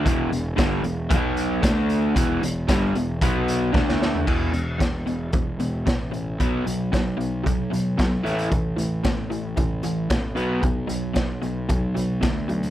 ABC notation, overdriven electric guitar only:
X:1
M:4/4
L:1/8
Q:1/4=113
K:Edor
V:1 name="Overdriven electric guitar" clef=bass
[E,,B,,E,] [E,,B,,] [G,,D,G,] [E,,B,,] [B,,F,B,]2 [D,A,D]2 | [E,,B,,E,] [E,,B,,] [G,,D,G,] [E,,B,,] [B,,F,B,]2 [D,A,D]2 | [E,,B,,E,] [E,,B,,] [E,,B,,] [E,,B,,] [E,,B,,] [E,,B,,] [E,,B,,] [E,,B,,] | [B,,F,B,] [B,,F,] [B,,F,] [B,,F,] [B,,F,] [B,,F,] [B,,F,] [A,,E,A,] |
[A,,E,] [A,,E,] [A,,E,] [A,,E,] [A,,E,] [A,,E,] [A,,E,] [B,,F,B,] | [B,,F,] [B,,F,] [B,,F,] [B,,F,] [B,,F,] [B,,F,] [B,,F,] [B,,F,] |]